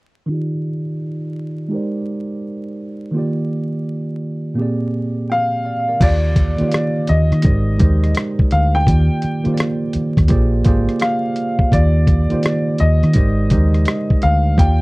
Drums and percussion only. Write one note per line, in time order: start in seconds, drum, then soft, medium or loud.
6.01 kick medium
6.01 closed hi-hat medium
6.01 crash medium
6.36 kick medium
6.36 closed hi-hat medium
6.58 closed hi-hat soft
6.71 cross-stick loud
6.71 closed hi-hat medium
7.07 closed hi-hat medium
7.32 cross-stick soft
7.32 closed hi-hat soft
7.42 kick medium
7.42 closed hi-hat medium
7.79 kick medium
7.79 closed hi-hat medium
8.04 cross-stick soft
8.04 closed hi-hat soft
8.15 cross-stick loud
8.15 closed hi-hat medium
8.39 kick medium
8.51 closed hi-hat medium
8.87 kick medium
8.87 closed hi-hat medium
9.22 closed hi-hat soft
9.45 closed hi-hat soft
9.57 cross-stick loud
9.57 closed hi-hat medium
9.93 closed hi-hat medium
10.17 kick medium
10.17 cross-stick soft
10.17 closed hi-hat soft
10.28 kick medium
10.28 closed hi-hat medium
10.65 kick medium
10.65 closed hi-hat medium
10.89 cross-stick soft
10.89 closed hi-hat soft
11.00 cross-stick loud
11.00 closed hi-hat medium
11.36 closed hi-hat medium
11.59 kick medium
11.72 kick medium
11.72 closed hi-hat medium
12.07 kick medium
12.07 closed hi-hat medium
12.30 closed hi-hat soft
12.43 cross-stick loud
12.43 closed hi-hat medium
12.78 closed hi-hat medium
13.03 cross-stick soft
13.03 closed hi-hat soft
13.13 kick medium
13.13 closed hi-hat medium
13.50 kick medium
13.50 closed hi-hat medium
13.74 cross-stick soft
13.74 closed hi-hat soft
13.85 cross-stick loud
13.85 closed hi-hat medium
14.10 kick medium
14.22 closed hi-hat medium
14.58 kick medium
14.58 closed hi-hat medium